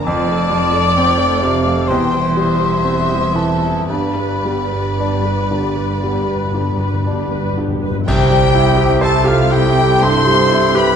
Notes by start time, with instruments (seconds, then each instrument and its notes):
0.05 double bass section F1, cello section F2, grand piano F2, viola section C4 F4, violin section D5 A5, flute D6
0.29 viola section A3 A4
0.51 grand piano F3, viola section C4 F4
0.74 viola section A3 A4
0.96 viola section C4 F4, grand piano C4, violin section G5
1.19 viola section A3 A4
1.41 grand piano C3, viola section C4 F4, violin section F5
1.65 viola section A3 A4
1.88 double bass section E1, cello section E2, grand piano E2, viola section E3 G4, violin section C5 G5, flute C6
2.13 viola section G3 E4
2.36 viola section E3 G4, grand piano G3, violin section E5
2.61 viola section G3 E4
2.85 viola section E3 G4, grand piano C4
3.12 viola section G3 E4
3.34 grand piano E3, viola section E3 G4, violin section A4, flute A5
3.62 viola section G3 E4
3.88 double bass section G1, cello section G2, grand piano G2, viola section B3 G4, violin section B4 D5, flute B5
4.06 timpani G2
4.15 timpani G2, viola section G3 B4
4.23 timpani G2
4.31 timpani G2
4.45 grand piano G3, viola section B3 G4
4.50 timpani G2
4.72 timpani G2, viola section G3 B4
4.84 timpani G2
4.92 timpani G2
4.99 timpani G2, viola section B3 G4, grand piano D4
5.11 timpani G2
5.19 timpani G2
5.25 viola section G3 B4
5.36 timpani G2
5.51 timpani G2, grand piano D3, viola section B3 G4
5.61 timpani G2
5.70 timpani G2
5.77 timpani G2, viola section G3 B4
5.86 timpani G2
5.95 timpani G2
6.02 timpani G2, grand piano G3, viola section B3 G4
6.12 timpani G2
6.19 timpani G2
6.28 timpani G2, viola section G3 B4
6.36 timpani G2
6.44 timpani G2
6.51 timpani G2, grand piano D3, viola section B3 G4
6.60 timpani G2
6.69 timpani G2
6.77 timpani G2, viola section G3 B4
6.86 timpani G2
6.93 timpani G2
7.02 timpani G2, viola section B3 G4
7.07 timpani G2, grand piano D4
7.19 timpani G2
7.26 timpani G2
7.32 timpani G2, viola section G3 B4
7.43 timpani G2
7.51 timpani G2
7.57 timpani G2, grand piano D3, viola section B3 G4
7.68 timpani G2
7.75 timpani G2
7.83 timpani G2, viola section G3 B4
7.91 timpani G2
7.99 timpani G2
8.06 grand piano C2, double bass section C2, timpani C3, cello section C3, viola section G3 E4, clarinet G4, oboe G4, french horn section C5, flute G5, violin section G5, concert bass drum, crash
8.31 grand piano G3
8.55 grand piano E4
8.77 grand piano G4
9.01 french horn section A4, clarinet A4, oboe A4, grand piano C5, violin section A5, flute A5
9.24 oboe F4, clarinet F4, grand piano G4, flute F5, violin section F5
9.51 grand piano E4, oboe G4, clarinet G4, flute G5, violin section G5
9.79 grand piano G3
10.02 grand piano G2, clarinet C5, oboe C5, flute C6, violin section C6
10.26 grand piano G3
10.51 grand piano E4
10.75 grand piano G4, oboe B4, clarinet B4, flute B5, violin section B5